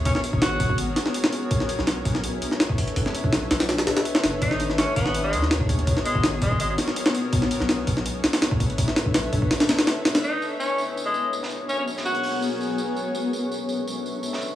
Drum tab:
HH |o-o-o-o-o-o-o-o-|o-o-o-o-o-o-o-ox|o-o-o-ooooooo-o-|o-o-o-o-o-o-o-ox|
TB |----------------|----------------|----------------|----------------|
SD |-o--o-----oo-o--|-o-oo--o---oo---|-o--o-oooooo-oo-|-o-oo--o---oo---|
BD |o--o--oo--------|o-----o------oo-|o--o------------|o-----o------oo-|

HH |o-o-o-o-o-o-o-o-|o-o-o-o-o-ooo-ox|o-o-o-o-ooooo-oo|----------------|
TB |----------------|----------------|----------------|x-x-x-x-x-x-x-x-|
SD |-o--o-----oo-o--|-o-oo--o--ooo---|-oo-o---ooooo-oo|-------------o--|
BD |o--o--oo--------|o-----o------oo-|o--o--oo--------|----------------|

HH |-----xo---------|----------------|
TB |x-x-x---x-x-x-x-|x-x-x-x-x-x-x-x-|
SD |---o------------|-------------o--|
BD |----------------|----------------|